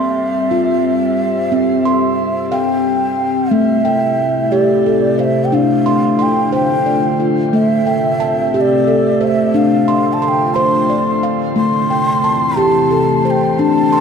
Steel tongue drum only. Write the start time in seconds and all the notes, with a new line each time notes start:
Already playing: C4 C6
0.51 F4
1.52 C4
1.85 C6
2.52 F5
3.51 A3
3.85 G5
4.52 G4
4.86 A4
5.19 C5
5.52 D4
5.86 C6
6.19 C6
6.52 C5
6.86 D5
7.20 F4
7.53 A3
7.87 G5
8.20 A5
8.54 G4
8.87 A4
9.21 C5
9.54 D4
9.88 C6
10.22 C6
10.56 C5
10.90 D5
11.23 F5
11.56 A3
11.90 G5
12.24 A5
12.57 G4
12.91 A4
13.25 C5
13.59 D4
13.93 C6